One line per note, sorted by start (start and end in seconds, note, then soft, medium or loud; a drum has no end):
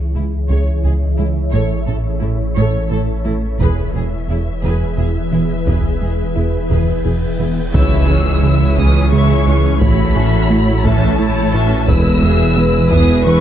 0.00 1.55 C#2 medium
0.00 3.56 E3 medium
0.00 1.49 G#3 soft
0.00 1.49 E4 soft
0.00 3.56 E4 medium
0.00 1.49 G#4 soft
0.00 3.56 C#5 medium
0.00 3.56 E5 soft
0.15 0.36 C#2 soft
0.15 0.23 C#2 soft
0.15 0.36 C#4 medium
0.15 0.23 E4 soft
0.15 0.23 G#4 soft
0.49 0.57 C#2 soft
0.49 0.70 C#2 medium
0.49 0.58 C#2 medium
0.49 0.71 C#3 medium
0.49 0.82 G#4 soft
0.49 0.82 C#5 soft
0.84 1.05 C#2 soft
0.84 0.92 C#2 soft
0.84 1.05 C#4 medium
0.84 0.92 G#4 soft
1.02 taiko soft
1.18 1.26 C#2 soft
1.18 1.39 C#3 soft
1.18 1.40 G#3 medium
1.18 1.26 E4 soft
1.18 1.27 G#4 soft
1.52 1.61 A1 medium
1.52 3.62 A1 medium
1.52 1.74 A2 medium
1.52 1.61 A2 medium
1.52 3.56 A3 medium
1.52 1.74 A3 medium
1.52 3.56 C#4 medium
1.52 3.60 A4 medium
1.52 1.85 A4 soft
1.52 1.85 C#5 medium
1.87 1.96 A1 soft
1.87 1.95 A2 soft
1.87 2.08 A2 medium
1.87 2.09 C#4 medium
1.87 1.95 A4 soft
1.87 1.96 A4 soft
2.21 2.30 A1 soft
2.21 2.30 A2 medium
2.21 2.43 A2 medium
2.21 2.29 E4 soft
2.21 2.30 A4 soft
2.21 2.43 A4 medium
2.56 2.65 A1 medium
2.56 2.64 A2 medium
2.56 2.77 A2 medium
2.56 2.78 A3 medium
2.56 2.89 A4 medium
2.56 2.88 C#5 medium
2.91 2.99 A1 medium
2.91 2.99 A2 soft
2.91 3.12 A2 medium
2.91 2.99 A4 medium
2.91 3.12 A4 medium
2.91 3.00 A4 soft
3.24 3.33 A1 medium
3.24 3.33 A2 soft
3.24 3.46 A3 soft
3.24 3.32 E4 soft
3.24 3.47 E4 medium
3.24 3.34 A4 medium
3.59 3.68 E1 medium
3.59 7.74 E1 medium
3.59 3.81 E2 medium
3.59 3.68 E2 medium
3.59 3.81 E3 medium
3.59 7.71 E3 medium
3.59 7.38 G#3 medium
3.59 7.38 B3 medium
3.59 7.70 E4 medium
3.59 3.93 G#4 medium
3.59 7.74 G#4 medium
3.59 3.93 B4 medium
3.59 7.74 B4 medium
3.59 7.50 E5 medium
3.59 taiko medium
3.94 4.02 E1 soft
3.94 4.15 E2 medium
3.94 4.03 E2 soft
3.94 4.16 G#3 medium
3.94 4.03 G#4 soft
3.94 4.04 G#4 soft
4.29 4.37 E1 soft
4.29 4.37 E2 soft
4.29 4.50 E2 medium
4.29 4.50 E4 medium
4.29 4.38 E4 soft
4.29 4.37 G#4 soft
4.63 4.71 E1 medium
4.63 4.84 E2 medium
4.63 4.72 E2 medium
4.63 4.84 E3 medium
4.63 4.96 G#4 medium
4.63 4.96 B4 medium
4.98 5.06 E1 soft
4.98 5.18 E2 soft
4.98 5.06 E2 soft
4.98 5.19 E4 medium
4.98 5.06 G#4 soft
4.98 5.07 G#4 soft
5.32 5.40 E1 soft
5.32 5.40 E2 soft
5.32 5.53 E3 soft
5.32 5.53 B3 medium
5.32 5.40 E4 soft
5.32 5.41 G#4 soft
5.67 5.75 E1 soft
5.67 5.75 E2 soft
5.67 5.88 E2 medium
5.67 5.88 E3 medium
5.67 5.99 G#4 soft
5.67 5.99 B4 soft
5.67 taiko medium
5.67 cymbal swell soft
6.01 6.10 E1 soft
6.01 6.09 E2 soft
6.01 6.23 E2 soft
6.01 6.22 G#3 medium
6.01 6.10 G#4 soft
6.36 6.44 E1 soft
6.36 6.44 E2 soft
6.36 6.57 E2 medium
6.36 6.44 E4 soft
6.36 6.57 E4 medium
6.36 6.45 G#4 soft
6.70 6.78 E1 soft
6.70 6.79 E2 soft
6.70 6.92 E2 medium
6.70 6.91 E3 medium
6.70 7.03 G#4 soft
6.70 7.03 B4 soft
6.70 taiko medium
7.04 7.13 E1 soft
7.04 7.13 E2 soft
7.04 7.26 E2 medium
7.04 7.26 E4 medium
7.04 7.12 G#4 soft
7.04 7.13 G#4 soft
7.39 7.48 E1 soft
7.39 7.48 E2 soft
7.39 7.61 E3 medium
7.39 7.60 B3 medium
7.39 7.47 E4 soft
7.39 7.48 G#4 soft
7.73 8.65 C#2 medium
7.73 9.83 C#2 medium
7.73 7.95 C#2 medium
7.73 8.66 C#2 medium
7.73 7.95 C#3 medium
7.73 11.84 E3 medium
7.73 8.06 G#3 medium
7.73 8.06 E4 medium
7.73 11.84 E4 medium
7.73 9.77 G#4 medium
7.73 8.05 C#5 medium
7.73 11.84 C#5 medium
7.73 8.05 E5 medium
7.73 8.74 E6 loud
7.73 taiko loud
7.73 impact medium
8.07 8.29 C#2 medium
8.07 8.29 E3 medium
8.07 8.43 E3 medium
8.07 8.43 C#4 medium
8.07 8.42 G#4 medium
8.07 8.42 C#5 medium
8.43 8.64 C#3 medium
8.43 8.78 G#3 medium
8.43 8.64 G#3 medium
8.43 8.78 E4 medium
8.43 8.76 C#5 medium
8.43 8.77 E5 medium
8.77 8.98 C#2 medium
8.77 9.69 C#2 medium
8.77 8.99 C#3 medium
8.77 9.12 E3 medium
8.77 9.12 C#4 medium
8.77 9.12 G#4 medium
8.77 9.78 G#4 medium
8.77 9.11 C#5 medium
8.77 9.12 D#6 medium
8.77 taiko medium
9.12 9.33 C#3 medium
9.12 9.33 G#3 medium
9.12 9.44 G#3 medium
9.12 9.44 E4 medium
9.12 9.44 C#5 medium
9.12 9.44 E5 medium
9.12 9.80 C#6 medium
9.47 9.68 C#2 medium
9.47 9.81 E3 medium
9.47 9.81 C#4 medium
9.47 9.81 G#4 medium
9.47 9.79 C#5 medium
9.80 10.72 A1 medium
9.80 11.90 A1 medium
9.80 10.72 A2 medium
9.80 10.02 A2 medium
9.80 10.02 A3 medium
9.80 10.13 A3 medium
9.80 10.13 E4 medium
9.80 10.85 F#4 medium
9.80 11.88 A4 medium
9.80 10.13 C#5 medium
9.80 10.82 B5 loud
9.80 taiko loud
10.16 10.37 A2 medium
10.16 10.50 E3 medium
10.16 10.50 C#4 medium
10.16 10.36 C#4 medium
10.16 10.50 A4 medium
10.16 10.50 E5 medium
10.50 10.84 A3 medium
10.50 10.71 A3 medium
10.50 10.84 E4 medium
10.50 10.71 E4 medium
10.50 10.85 C#5 medium
10.84 11.76 A1 medium
10.84 11.76 A2 medium
10.84 11.06 A2 medium
10.84 11.19 E3 medium
10.84 11.05 A3 loud
10.84 11.19 C#4 medium
10.84 11.18 E4 medium
10.84 11.19 A4 medium
10.84 11.19 E5 medium
10.84 11.88 A5 loud
10.84 taiko medium
11.19 11.51 A3 medium
11.19 11.40 A3 medium
11.19 11.51 E4 medium
11.19 11.40 E4 medium
11.19 11.53 E4 medium
11.19 11.51 C#5 medium
11.54 11.75 A2 medium
11.54 11.88 E3 medium
11.54 11.88 C#4 medium
11.54 11.88 F#4 medium
11.54 11.88 A4 medium
11.54 11.89 E5 medium
11.88 12.79 E1 medium
11.88 13.40 E1 medium
11.88 12.79 E2 medium
11.88 12.09 E2 medium
11.88 12.09 E3 medium
11.88 13.40 E3 medium
11.88 12.20 G#3 medium
11.88 12.20 E4 medium
11.88 13.40 E4 medium
11.88 12.22 G#4 medium
11.88 12.20 B4 medium
11.88 13.40 B4 medium
11.88 13.40 G#5 medium
11.88 12.90 E6 loud
11.88 taiko loud
12.22 12.43 E2 medium
12.22 12.57 E3 medium
12.22 12.43 G#3 medium
12.22 12.57 B3 medium
12.22 12.57 G#4 medium
12.22 12.58 G#4 medium
12.22 12.58 E5 medium
12.57 12.78 E3 medium
12.57 12.92 G#3 medium
12.57 12.77 B3 medium
12.57 12.92 E4 medium
12.57 12.92 B4 medium
12.57 13.40 B4 loud
12.91 13.40 E1 medium
12.91 13.40 E2 medium
12.91 13.13 E2 loud
12.91 13.12 E3 medium
12.91 13.26 E3 medium
12.91 13.26 B3 medium
12.91 13.26 G#4 medium
12.91 13.26 E5 medium
12.91 13.25 D#6 loud
12.91 taiko medium
13.26 13.40 E3 medium
13.26 13.40 G#3 medium
13.26 13.40 B3 medium
13.26 13.40 E4 medium
13.26 13.40 B4 medium
13.26 13.40 C#6 loud